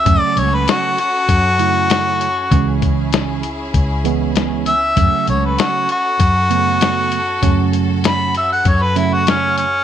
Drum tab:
HH |xxxxxxxx|xxxxxxxx|xxxxxxxx|xxxxxxxx|
SD |--o---o-|--o---o-|--o---o-|--o---o-|
BD |o---o---|oo--o---|o---o---|o---o---|